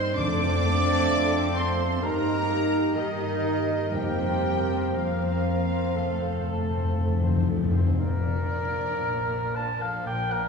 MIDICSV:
0, 0, Header, 1, 13, 480
1, 0, Start_track
1, 0, Key_signature, -2, "major"
1, 0, Tempo, 924499
1, 95, Time_signature, 4, 2, 24, 8
1, 1056, Tempo, 952381
1, 2016, Tempo, 1010101
1, 3936, Tempo, 1041667
1, 5090, End_track
2, 0, Start_track
2, 0, Title_t, "Flute"
2, 0, Program_c, 0, 73
2, 92, Note_on_c, 0, 86, 125
2, 814, Note_on_c, 0, 84, 91
2, 822, Note_off_c, 0, 86, 0
2, 1057, Note_on_c, 0, 82, 95
2, 1064, Note_off_c, 0, 84, 0
2, 1533, Note_on_c, 0, 75, 82
2, 1540, Note_off_c, 0, 82, 0
2, 2010, Note_off_c, 0, 75, 0
2, 2013, Note_on_c, 0, 79, 93
2, 2504, Note_on_c, 0, 77, 73
2, 2511, Note_off_c, 0, 79, 0
2, 3460, Note_off_c, 0, 77, 0
2, 5090, End_track
3, 0, Start_track
3, 0, Title_t, "Violin section"
3, 0, Program_c, 1, 48
3, 0, Note_on_c, 1, 84, 127
3, 73, Note_off_c, 1, 84, 0
3, 84, Note_on_c, 1, 86, 127
3, 796, Note_off_c, 1, 86, 0
3, 814, Note_on_c, 1, 84, 100
3, 1052, Note_on_c, 1, 82, 118
3, 1056, Note_off_c, 1, 84, 0
3, 1523, Note_on_c, 1, 75, 101
3, 1529, Note_off_c, 1, 82, 0
3, 2009, Note_on_c, 1, 79, 103
3, 2013, Note_off_c, 1, 75, 0
3, 2493, Note_on_c, 1, 77, 91
3, 2496, Note_off_c, 1, 79, 0
3, 3454, Note_off_c, 1, 77, 0
3, 4178, Note_on_c, 1, 62, 66
3, 4653, Note_off_c, 1, 62, 0
3, 4661, Note_on_c, 1, 62, 67
3, 5090, Note_off_c, 1, 62, 0
3, 5090, End_track
4, 0, Start_track
4, 0, Title_t, "Violin section"
4, 0, Program_c, 2, 48
4, 0, Note_on_c, 2, 84, 122
4, 77, Note_off_c, 2, 84, 0
4, 89, Note_on_c, 2, 86, 127
4, 798, Note_off_c, 2, 86, 0
4, 811, Note_on_c, 2, 84, 89
4, 1055, Note_off_c, 2, 84, 0
4, 1055, Note_on_c, 2, 82, 109
4, 1529, Note_on_c, 2, 75, 92
4, 1530, Note_off_c, 2, 82, 0
4, 2006, Note_off_c, 2, 75, 0
4, 2012, Note_on_c, 2, 79, 92
4, 2497, Note_off_c, 2, 79, 0
4, 2499, Note_on_c, 2, 77, 72
4, 3457, Note_off_c, 2, 77, 0
4, 3935, Note_on_c, 2, 74, 98
4, 4644, Note_off_c, 2, 74, 0
4, 4662, Note_on_c, 2, 72, 81
4, 4781, Note_off_c, 2, 72, 0
4, 4781, Note_on_c, 2, 69, 78
4, 4898, Note_on_c, 2, 70, 83
4, 4899, Note_off_c, 2, 69, 0
4, 5012, Note_on_c, 2, 74, 76
4, 5016, Note_off_c, 2, 70, 0
4, 5090, Note_off_c, 2, 74, 0
4, 5090, End_track
5, 0, Start_track
5, 0, Title_t, "Cor anglais"
5, 0, Program_c, 3, 69
5, 91, Note_on_c, 3, 69, 94
5, 1052, Note_on_c, 3, 70, 78
5, 1060, Note_off_c, 3, 69, 0
5, 2977, Note_on_c, 3, 69, 77
5, 2984, Note_off_c, 3, 70, 0
5, 3787, Note_off_c, 3, 69, 0
5, 3940, Note_on_c, 3, 70, 110
5, 4662, Note_on_c, 3, 81, 95
5, 4669, Note_off_c, 3, 70, 0
5, 4782, Note_on_c, 3, 77, 82
5, 4789, Note_off_c, 3, 81, 0
5, 4896, Note_off_c, 3, 77, 0
5, 4898, Note_on_c, 3, 79, 95
5, 5013, Note_on_c, 3, 70, 93
5, 5020, Note_off_c, 3, 79, 0
5, 5090, Note_off_c, 3, 70, 0
5, 5090, End_track
6, 0, Start_track
6, 0, Title_t, "Trumpet section"
6, 0, Program_c, 4, 61
6, 0, Note_on_c, 4, 72, 127
6, 74, Note_off_c, 4, 72, 0
6, 92, Note_on_c, 4, 74, 127
6, 724, Note_off_c, 4, 74, 0
6, 812, Note_on_c, 4, 72, 89
6, 1051, Note_off_c, 4, 72, 0
6, 1055, Note_on_c, 4, 70, 104
6, 1526, Note_on_c, 4, 63, 97
6, 1530, Note_off_c, 4, 70, 0
6, 2012, Note_on_c, 4, 67, 95
6, 2014, Note_off_c, 4, 63, 0
6, 2488, Note_off_c, 4, 67, 0
6, 2498, Note_on_c, 4, 65, 75
6, 3438, Note_off_c, 4, 65, 0
6, 5090, End_track
7, 0, Start_track
7, 0, Title_t, "Viola section"
7, 0, Program_c, 5, 48
7, 0, Note_on_c, 5, 63, 71
7, 0, Note_on_c, 5, 72, 69
7, 91, Note_on_c, 5, 57, 75
7, 93, Note_on_c, 5, 69, 80
7, 94, Note_off_c, 5, 72, 0
7, 95, Note_off_c, 5, 63, 0
7, 203, Note_off_c, 5, 57, 0
7, 204, Note_off_c, 5, 69, 0
7, 218, Note_on_c, 5, 60, 70
7, 219, Note_on_c, 5, 72, 72
7, 335, Note_off_c, 5, 60, 0
7, 336, Note_off_c, 5, 72, 0
7, 336, Note_on_c, 5, 57, 74
7, 336, Note_on_c, 5, 69, 76
7, 455, Note_off_c, 5, 57, 0
7, 455, Note_off_c, 5, 69, 0
7, 456, Note_on_c, 5, 60, 75
7, 459, Note_on_c, 5, 72, 73
7, 575, Note_on_c, 5, 69, 69
7, 576, Note_off_c, 5, 60, 0
7, 576, Note_on_c, 5, 57, 69
7, 577, Note_off_c, 5, 72, 0
7, 687, Note_off_c, 5, 69, 0
7, 688, Note_off_c, 5, 57, 0
7, 696, Note_on_c, 5, 60, 67
7, 696, Note_on_c, 5, 72, 68
7, 816, Note_off_c, 5, 60, 0
7, 816, Note_off_c, 5, 72, 0
7, 818, Note_on_c, 5, 69, 72
7, 820, Note_on_c, 5, 57, 70
7, 936, Note_on_c, 5, 60, 66
7, 938, Note_off_c, 5, 57, 0
7, 938, Note_off_c, 5, 69, 0
7, 938, Note_on_c, 5, 72, 65
7, 1052, Note_on_c, 5, 70, 67
7, 1056, Note_on_c, 5, 67, 65
7, 1057, Note_off_c, 5, 60, 0
7, 1058, Note_off_c, 5, 72, 0
7, 1164, Note_off_c, 5, 70, 0
7, 1166, Note_off_c, 5, 67, 0
7, 1171, Note_on_c, 5, 67, 63
7, 1174, Note_on_c, 5, 63, 61
7, 1285, Note_off_c, 5, 67, 0
7, 1291, Note_on_c, 5, 67, 61
7, 1291, Note_on_c, 5, 70, 66
7, 1293, Note_off_c, 5, 63, 0
7, 1408, Note_off_c, 5, 67, 0
7, 1411, Note_off_c, 5, 70, 0
7, 1414, Note_on_c, 5, 67, 60
7, 1416, Note_on_c, 5, 63, 60
7, 1526, Note_off_c, 5, 67, 0
7, 1531, Note_on_c, 5, 70, 65
7, 1532, Note_on_c, 5, 67, 65
7, 1533, Note_off_c, 5, 63, 0
7, 1642, Note_off_c, 5, 67, 0
7, 1642, Note_off_c, 5, 70, 0
7, 1646, Note_on_c, 5, 63, 60
7, 1648, Note_on_c, 5, 67, 62
7, 1761, Note_off_c, 5, 67, 0
7, 1767, Note_on_c, 5, 67, 60
7, 1767, Note_on_c, 5, 70, 62
7, 1768, Note_off_c, 5, 63, 0
7, 1890, Note_off_c, 5, 67, 0
7, 1890, Note_off_c, 5, 70, 0
7, 1896, Note_on_c, 5, 63, 62
7, 1898, Note_on_c, 5, 67, 58
7, 2017, Note_on_c, 5, 70, 64
7, 2018, Note_on_c, 5, 58, 64
7, 2019, Note_off_c, 5, 63, 0
7, 2020, Note_off_c, 5, 67, 0
7, 2129, Note_off_c, 5, 70, 0
7, 2130, Note_off_c, 5, 58, 0
7, 2141, Note_on_c, 5, 60, 59
7, 2141, Note_on_c, 5, 72, 60
7, 2261, Note_off_c, 5, 60, 0
7, 2261, Note_off_c, 5, 72, 0
7, 2262, Note_on_c, 5, 58, 60
7, 2262, Note_on_c, 5, 70, 63
7, 2382, Note_off_c, 5, 58, 0
7, 2382, Note_off_c, 5, 70, 0
7, 2382, Note_on_c, 5, 72, 64
7, 2384, Note_on_c, 5, 60, 65
7, 2499, Note_on_c, 5, 58, 62
7, 2501, Note_off_c, 5, 60, 0
7, 2501, Note_off_c, 5, 72, 0
7, 2501, Note_on_c, 5, 70, 63
7, 2609, Note_off_c, 5, 58, 0
7, 2610, Note_off_c, 5, 70, 0
7, 2622, Note_on_c, 5, 60, 58
7, 2624, Note_on_c, 5, 72, 61
7, 2736, Note_on_c, 5, 58, 64
7, 2738, Note_off_c, 5, 60, 0
7, 2738, Note_on_c, 5, 70, 68
7, 2739, Note_off_c, 5, 72, 0
7, 2853, Note_on_c, 5, 60, 59
7, 2854, Note_off_c, 5, 58, 0
7, 2854, Note_on_c, 5, 72, 60
7, 2855, Note_off_c, 5, 70, 0
7, 2970, Note_on_c, 5, 69, 57
7, 2972, Note_on_c, 5, 57, 63
7, 2973, Note_off_c, 5, 60, 0
7, 2974, Note_off_c, 5, 72, 0
7, 3084, Note_off_c, 5, 69, 0
7, 3085, Note_off_c, 5, 57, 0
7, 3087, Note_on_c, 5, 72, 58
7, 3090, Note_on_c, 5, 60, 56
7, 3213, Note_off_c, 5, 72, 0
7, 3214, Note_off_c, 5, 60, 0
7, 3215, Note_on_c, 5, 69, 59
7, 3216, Note_on_c, 5, 57, 62
7, 3334, Note_on_c, 5, 60, 61
7, 3335, Note_on_c, 5, 72, 59
7, 3337, Note_off_c, 5, 69, 0
7, 3338, Note_off_c, 5, 57, 0
7, 3452, Note_on_c, 5, 69, 62
7, 3454, Note_on_c, 5, 57, 65
7, 3456, Note_off_c, 5, 60, 0
7, 3456, Note_off_c, 5, 72, 0
7, 3565, Note_off_c, 5, 69, 0
7, 3566, Note_off_c, 5, 57, 0
7, 3574, Note_on_c, 5, 72, 57
7, 3577, Note_on_c, 5, 60, 59
7, 3693, Note_off_c, 5, 72, 0
7, 3695, Note_off_c, 5, 60, 0
7, 3696, Note_on_c, 5, 69, 63
7, 3698, Note_on_c, 5, 57, 62
7, 3814, Note_off_c, 5, 69, 0
7, 3816, Note_off_c, 5, 57, 0
7, 3819, Note_on_c, 5, 60, 56
7, 3819, Note_on_c, 5, 72, 58
7, 3939, Note_off_c, 5, 60, 0
7, 3939, Note_off_c, 5, 72, 0
7, 4182, Note_on_c, 5, 53, 62
7, 4182, Note_on_c, 5, 58, 64
7, 4655, Note_off_c, 5, 53, 0
7, 4655, Note_off_c, 5, 58, 0
7, 4661, Note_on_c, 5, 58, 64
7, 4663, Note_on_c, 5, 53, 64
7, 5090, Note_off_c, 5, 53, 0
7, 5090, Note_off_c, 5, 58, 0
7, 5090, End_track
8, 0, Start_track
8, 0, Title_t, "Clarinet"
8, 0, Program_c, 6, 71
8, 95, Note_on_c, 6, 60, 84
8, 1053, Note_on_c, 6, 63, 81
8, 1061, Note_off_c, 6, 60, 0
8, 2013, Note_on_c, 6, 60, 75
8, 2020, Note_off_c, 6, 63, 0
8, 3783, Note_off_c, 6, 60, 0
8, 5090, End_track
9, 0, Start_track
9, 0, Title_t, "French horn section"
9, 0, Program_c, 7, 60
9, 91, Note_on_c, 7, 57, 88
9, 91, Note_on_c, 7, 60, 93
9, 1035, Note_off_c, 7, 57, 0
9, 1035, Note_off_c, 7, 60, 0
9, 1051, Note_on_c, 7, 58, 74
9, 1053, Note_on_c, 7, 63, 80
9, 1528, Note_off_c, 7, 58, 0
9, 1529, Note_off_c, 7, 63, 0
9, 1534, Note_on_c, 7, 63, 76
9, 1537, Note_on_c, 7, 58, 74
9, 2009, Note_off_c, 7, 63, 0
9, 2010, Note_off_c, 7, 58, 0
9, 2021, Note_on_c, 7, 58, 75
9, 2025, Note_on_c, 7, 60, 68
9, 2490, Note_off_c, 7, 60, 0
9, 2492, Note_off_c, 7, 58, 0
9, 2496, Note_on_c, 7, 60, 71
9, 2499, Note_on_c, 7, 58, 71
9, 2962, Note_off_c, 7, 60, 0
9, 2964, Note_off_c, 7, 58, 0
9, 2974, Note_on_c, 7, 57, 75
9, 2975, Note_on_c, 7, 60, 74
9, 3770, Note_off_c, 7, 60, 0
9, 3785, Note_off_c, 7, 57, 0
9, 5090, End_track
10, 0, Start_track
10, 0, Title_t, "Cello section"
10, 0, Program_c, 8, 48
10, 0, Note_on_c, 8, 60, 99
10, 89, Note_on_c, 8, 62, 117
10, 92, Note_off_c, 8, 60, 0
10, 799, Note_off_c, 8, 62, 0
10, 811, Note_on_c, 8, 60, 80
10, 1050, Note_off_c, 8, 60, 0
10, 1052, Note_on_c, 8, 58, 87
10, 1528, Note_on_c, 8, 51, 90
10, 1529, Note_off_c, 8, 58, 0
10, 2015, Note_off_c, 8, 51, 0
10, 2015, Note_on_c, 8, 55, 89
10, 2489, Note_off_c, 8, 55, 0
10, 2500, Note_on_c, 8, 53, 72
10, 3458, Note_off_c, 8, 53, 0
10, 3937, Note_on_c, 8, 46, 80
10, 4365, Note_off_c, 8, 46, 0
10, 4421, Note_on_c, 8, 46, 67
10, 4843, Note_off_c, 8, 46, 0
10, 4899, Note_on_c, 8, 46, 73
10, 5090, Note_off_c, 8, 46, 0
10, 5090, End_track
11, 0, Start_track
11, 0, Title_t, "Bassoon"
11, 0, Program_c, 10, 70
11, 92, Note_on_c, 10, 53, 93
11, 1057, Note_on_c, 10, 51, 86
11, 1064, Note_off_c, 10, 53, 0
11, 2016, Note_on_c, 10, 53, 74
11, 2023, Note_off_c, 10, 51, 0
11, 3785, Note_off_c, 10, 53, 0
11, 5090, End_track
12, 0, Start_track
12, 0, Title_t, "Double bass section"
12, 0, Program_c, 11, 48
12, 90, Note_on_c, 11, 41, 95
12, 515, Note_off_c, 11, 41, 0
12, 570, Note_on_c, 11, 41, 86
12, 998, Note_off_c, 11, 41, 0
12, 1053, Note_on_c, 11, 43, 89
12, 1473, Note_off_c, 11, 43, 0
12, 1529, Note_on_c, 11, 43, 79
12, 1956, Note_off_c, 11, 43, 0
12, 2019, Note_on_c, 11, 41, 86
12, 2444, Note_off_c, 11, 41, 0
12, 2497, Note_on_c, 11, 41, 77
12, 2916, Note_off_c, 11, 41, 0
12, 2974, Note_on_c, 11, 41, 80
12, 3402, Note_off_c, 11, 41, 0
12, 3455, Note_on_c, 11, 41, 80
12, 3877, Note_off_c, 11, 41, 0
12, 3934, Note_on_c, 11, 34, 79
12, 4364, Note_off_c, 11, 34, 0
12, 4425, Note_on_c, 11, 34, 71
12, 4845, Note_off_c, 11, 34, 0
12, 4898, Note_on_c, 11, 34, 75
12, 5090, Note_off_c, 11, 34, 0
12, 5090, End_track
13, 0, Start_track
13, 0, Title_t, "Timpani"
13, 0, Program_c, 12, 47
13, 89, Note_on_c, 12, 41, 110
13, 792, Note_off_c, 12, 41, 0
13, 2015, Note_on_c, 12, 41, 112
13, 2716, Note_off_c, 12, 41, 0
13, 2972, Note_on_c, 12, 41, 44
13, 3000, Note_off_c, 12, 41, 0
13, 3006, Note_on_c, 12, 41, 43
13, 3036, Note_off_c, 12, 41, 0
13, 3042, Note_on_c, 12, 41, 46
13, 3072, Note_off_c, 12, 41, 0
13, 3077, Note_on_c, 12, 41, 49
13, 3107, Note_off_c, 12, 41, 0
13, 3112, Note_on_c, 12, 41, 49
13, 3140, Note_off_c, 12, 41, 0
13, 3146, Note_on_c, 12, 41, 54
13, 3178, Note_off_c, 12, 41, 0
13, 3183, Note_on_c, 12, 41, 56
13, 3214, Note_off_c, 12, 41, 0
13, 3219, Note_on_c, 12, 41, 52
13, 3249, Note_off_c, 12, 41, 0
13, 3255, Note_on_c, 12, 41, 56
13, 3285, Note_off_c, 12, 41, 0
13, 3291, Note_on_c, 12, 41, 60
13, 3322, Note_off_c, 12, 41, 0
13, 3328, Note_on_c, 12, 41, 64
13, 3355, Note_off_c, 12, 41, 0
13, 3361, Note_on_c, 12, 41, 65
13, 3392, Note_off_c, 12, 41, 0
13, 3398, Note_on_c, 12, 41, 66
13, 3426, Note_off_c, 12, 41, 0
13, 3432, Note_on_c, 12, 41, 72
13, 3463, Note_off_c, 12, 41, 0
13, 3468, Note_on_c, 12, 41, 74
13, 3495, Note_off_c, 12, 41, 0
13, 3501, Note_on_c, 12, 41, 73
13, 3525, Note_off_c, 12, 41, 0
13, 3531, Note_on_c, 12, 41, 79
13, 3561, Note_off_c, 12, 41, 0
13, 3566, Note_on_c, 12, 41, 87
13, 3593, Note_off_c, 12, 41, 0
13, 3599, Note_on_c, 12, 41, 90
13, 3629, Note_off_c, 12, 41, 0
13, 3635, Note_on_c, 12, 41, 95
13, 3663, Note_off_c, 12, 41, 0
13, 3669, Note_on_c, 12, 41, 104
13, 3699, Note_off_c, 12, 41, 0
13, 3704, Note_on_c, 12, 41, 97
13, 3733, Note_off_c, 12, 41, 0
13, 3739, Note_on_c, 12, 41, 108
13, 3770, Note_off_c, 12, 41, 0
13, 3776, Note_on_c, 12, 41, 112
13, 3802, Note_off_c, 12, 41, 0
13, 3808, Note_on_c, 12, 41, 118
13, 3837, Note_off_c, 12, 41, 0
13, 3843, Note_on_c, 12, 41, 114
13, 3876, Note_off_c, 12, 41, 0
13, 3881, Note_on_c, 12, 41, 111
13, 3914, Note_off_c, 12, 41, 0
13, 5090, End_track
0, 0, End_of_file